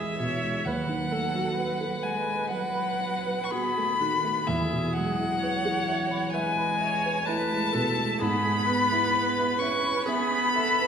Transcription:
Already playing: grand piano E2 G#3 G#4 B4 G#5 B5, cello E3, viola G#4, violin E5
0.19 grand piano B2, viola C#5
0.43 grand piano G#3
0.65 grand piano D#2, cello F#3, viola B4, violin F#5
0.89 grand piano D#3
1.11 grand piano A3, viola A4
1.35 grand piano F#4
1.57 viola B4, grand piano B4
1.81 grand piano A4
2.03 cello G#3, grand piano F#5, violin G#5
2.26 grand piano B5
2.50 cello F#3, violin F#5, grand piano F#5
2.75 grand piano B5
3.01 grand piano F#5
3.26 grand piano B4
3.44 violin C#6
3.51 cello B3, grand piano F#4, viola G#4, violin B5
3.77 grand piano A3
4.01 grand piano D#3, viola F#4
4.24 grand piano A3
4.47 grand piano E2, cello E3, viola G#4, violin E5
4.73 grand piano B2
4.93 cello F#3, grand piano G#3, violin F#5
5.20 grand piano E4
5.41 grand piano B4, viola C#5
5.65 grand piano G#4
5.88 grand piano E5
6.11 grand piano B5
6.32 cello G#3, viola B4, grand piano E5, violin G#5
6.58 grand piano B5
6.79 viola C#5, grand piano E5
7.05 grand piano B4
7.25 cello A3, grand piano E4, viola B4, violin A5
7.52 grand piano G#3
7.73 grand piano B2, viola A4
7.97 grand piano G#3
8.19 grand piano G#2, cello B3, viola G#4, violin B5
8.44 grand piano G#3
8.67 grand piano B3, viola B4
8.92 grand piano E4
9.15 grand piano B4
9.38 grand piano E4
9.59 cello C#4, grand piano E5, violin C#6
9.85 grand piano B5
10.06 cello B3, viola G#4, grand piano E5, violin B5
10.32 grand piano B5
10.55 viola A4, grand piano E5
10.81 grand piano B4

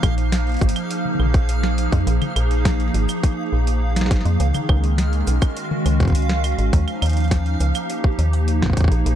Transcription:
Already playing: analog synth pad F3 A#3 D#4, synth texture F5
0.03 fm bass A#1, kick, closed hi-hat, claves
0.18 closed hi-hat
0.32 snare, closed hi-hat
0.47 closed hi-hat
0.49 closed hi-hat
0.52 closed hi-hat
0.54 closed hi-hat
0.57 closed hi-hat
0.59 fm bass G#1, kick, closed hi-hat, cabasa
0.66 analog synth pad G#4, closed hi-hat
0.76 closed hi-hat, claves
0.91 closed hi-hat
1.05 high tom
1.15 high tom
1.20 fm bass A#1, claves
1.25 high tom
1.34 kick, closed hi-hat
1.49 closed hi-hat
1.63 snare
1.78 closed hi-hat
1.92 fm bass F2, kick, closed hi-hat
2.07 fm bass A#1, closed hi-hat
2.22 closed hi-hat, high tom, claves
2.36 fm bass A#1, closed hi-hat, claves
2.51 closed hi-hat
2.65 kick, snare, closed hi-hat
2.80 closed hi-hat
2.94 fm bass G#1, closed hi-hat
3.09 closed hi-hat, cabasa, claves
3.23 kick, closed hi-hat
3.53 fm bass A#1
3.67 closed hi-hat
3.96 snare, closed hi-hat
4.01 snare
4.06 snare
4.11 fm bass G#1, kick, snare, closed hi-hat
4.16 snare
4.21 snare
4.25 fm bass F2, closed hi-hat
4.40 fm bass C#2, analog synth pad D#3, closed hi-hat
4.55 closed hi-hat, high tom, cabasa, claves
4.64 analog synth pad G#3 C#4
4.69 fm bass C#2, kick, claves
4.84 closed hi-hat
4.98 snare, closed hi-hat
5.13 closed hi-hat
5.27 fm bass B1, closed hi-hat, cabasa
5.37 analog synth pad F#4
5.42 kick, closed hi-hat, cabasa, claves
5.57 closed hi-hat
5.71 high tom
5.86 fm bass C#2, closed hi-hat, claves
6.00 kick, closed hi-hat
6.03 kick
6.05 kick
6.08 kick, closed hi-hat
6.10 kick
6.12 kick, closed hi-hat
6.22 closed hi-hat
6.29 snare
6.44 closed hi-hat, claves
6.58 fm bass G#1, closed hi-hat
6.73 fm bass D#2, analog synth pad F3, kick, closed hi-hat
6.85 analog synth pad D#4, closed hi-hat, claves
6.92 analog synth pad A#3
7.02 fm bass D#2, closed hi-hat, claves
7.06 closed hi-hat
7.09 closed hi-hat
7.13 closed hi-hat
7.17 closed hi-hat
7.20 closed hi-hat
7.24 closed hi-hat
7.28 kick, snare, closed hi-hat
7.31 closed hi-hat
7.46 closed hi-hat
7.60 fm bass C#2, closed hi-hat, cabasa
7.72 analog synth pad G4, closed hi-hat, cabasa, claves
7.90 closed hi-hat
8.04 kick
8.19 fm bass D#2, closed hi-hat
8.33 closed hi-hat
8.48 closed hi-hat
8.62 kick, snare
8.66 kick
8.70 kick
8.73 kick
8.77 kick, closed hi-hat
8.81 kick
8.84 kick
8.88 fm bass A#1, kick, closed hi-hat
9.06 fm bass A#1, closed hi-hat

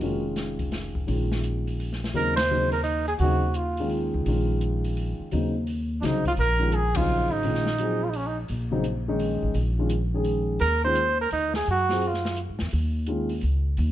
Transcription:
Already playing: grand piano A#3 D#4 F#4
0.01 upright bass F1, grand piano D#3 G#3 C#4 F4, open hi-hat
0.36 snare, closed hi-hat
0.59 kick, open hi-hat
0.72 snare, open hi-hat
0.95 kick
1.07 upright bass A#1, grand piano D#3 G#3 C#4 F4, open hi-hat
1.32 snare
1.44 closed hi-hat
1.67 open hi-hat
1.80 open hi-hat
1.93 snare
2.04 snare
2.14 upright bass D#2, grand piano C#3 F#3 C4 D#4, trumpet A#4, open hi-hat
2.36 trumpet C5, snare, ride
2.51 grand piano C#3 F#3 C4 D#4
2.72 trumpet A#4, open hi-hat
2.83 trumpet D#4, open hi-hat
3.08 trumpet G#4
3.19 upright bass D#2, grand piano C#3 F#3 C4, trumpet F#4, open hi-hat
3.23 grand piano D#4
3.54 trumpet F4, closed hi-hat
3.77 grand piano D#3 G#3 C#4 F4, open hi-hat
3.89 open hi-hat
4.14 upright bass C#2
4.26 upright bass A#1, grand piano D#3 G#3 C#4 F4, open hi-hat
4.61 closed hi-hat
4.84 open hi-hat
4.97 open hi-hat
5.20 muted upright bass stroke
5.31 upright bass D#2, grand piano C#3 F#3 C4 D#4, open hi-hat
5.67 open hi-hat
6.01 upright bass C2, grand piano C#3 F#3 C4 D#4, trumpet D4 D#4, snare, closed hi-hat
6.25 trumpet F4, kick, open hi-hat
6.37 upright bass A#1, trumpet A#4, open hi-hat
6.59 grand piano D#3 G#3 C#4 F4
6.72 trumpet G#4, closed hi-hat
6.95 grand piano C#3 F#3 C4 D#4, trumpet F4, kick, ride
7.31 upright bass G#1, trumpet D#4
7.43 upright bass A#1, grand piano D#3 G#3 C#4 F4, open hi-hat
7.55 snare
7.66 snare
7.78 grand piano F#3 C4 F4 G#4, closed hi-hat
8.03 trumpet F4
8.09 trumpet D#4, open hi-hat
8.16 trumpet C#4
8.26 trumpet D#4
8.48 upright bass A#1, open hi-hat
8.71 grand piano C#3 F#3 C4 D#4
8.84 closed hi-hat
9.08 grand piano D#3 G#3 C#4 D#4
9.19 open hi-hat
9.43 upright bass A1
9.54 upright bass A#1, open hi-hat
9.79 grand piano D#3 G#3 C#4 F4
9.90 closed hi-hat
10.14 grand piano D#3 G#3 C#4 G#4
10.24 open hi-hat
10.59 upright bass D#2, trumpet A#4, open hi-hat
10.84 grand piano D#3 G#3 C#4 F4, trumpet C5
10.95 closed hi-hat
11.21 trumpet A#4
11.31 upright bass D2, trumpet D#4, open hi-hat
11.54 trumpet G#4, snare
11.66 upright bass F#2, open hi-hat
11.70 trumpet F#4
11.89 grand piano F#3 C4 F4 G#4, snare
12.01 open hi-hat
12.07 trumpet F4
12.14 snare
12.25 snare
12.36 closed hi-hat
12.49 upright bass G#2
12.59 upright bass E2, snare
12.71 upright bass D#2, open hi-hat
13.07 grand piano D#3 G#3 C#4 F4, closed hi-hat
13.29 open hi-hat
13.41 upright bass C#2, open hi-hat
13.77 upright bass D#2, open hi-hat

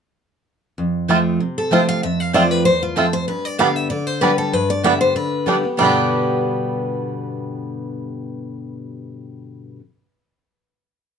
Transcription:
0.78 steel-string acoustic guitar F2
1.08 steel-string acoustic guitar F3 A3 C4 F4, five-string banjo A3 C4 F4, mandolin C4 F4 C5 A5
1.40 steel-string acoustic guitar C3
1.58 steel-string acoustic guitar A4
1.71 steel-string acoustic guitar F3 A3 C4 F4 C5, five-string banjo A3 C4 F4, mandolin C4 F4 C5 A5
1.89 steel-string acoustic guitar F5
2.03 steel-string acoustic guitar F2 E5
2.20 steel-string acoustic guitar F5
2.33 steel-string acoustic guitar F3 A3 C4 F4 D5, five-string banjo A3 C4 F4, mandolin C4 F4 C5 A5
2.51 steel-string acoustic guitar B4
2.65 steel-string acoustic guitar E2 C5
2.83 steel-string acoustic guitar F4
2.96 steel-string acoustic guitar F2 A4, five-string banjo A3 C4 F4, mandolin C4 F4 C5 A5
3.13 steel-string acoustic guitar C5
3.28 steel-string acoustic guitar G2 B4
3.45 steel-string acoustic guitar D5
3.58 steel-string acoustic guitar D3 G3 B3 G4 F5, five-string banjo G3 B3 D4, mandolin B3 G4 D5 G5
3.76 steel-string acoustic guitar E5
3.90 steel-string acoustic guitar D3 D5
4.07 steel-string acoustic guitar C5
4.21 steel-string acoustic guitar D3 G3 B3 G4 B4, five-string banjo G3 B3 D4, mandolin B3 G4 D5 G5
4.38 steel-string acoustic guitar A4
4.53 steel-string acoustic guitar G2 B4
4.70 steel-string acoustic guitar D5
4.83 steel-string acoustic guitar D3 G3 B3 G4 E5, five-string banjo G3 B3 D4, mandolin B3 G4 D5 G5
5.01 steel-string acoustic guitar C5
5.16 steel-string acoustic guitar D3 B4
5.46 steel-string acoustic guitar D3 G3 B3 G4, five-string banjo G3 B3 D4, mandolin B3 G4 D5 G5
5.63 steel-string acoustic guitar B3 G4
5.77 steel-string acoustic guitar G2 B2 D3 G3 B3 G4 B4, five-string banjo G3 B3, mandolin B3 G4 D5 G5
5.83 five-string banjo D4 G4

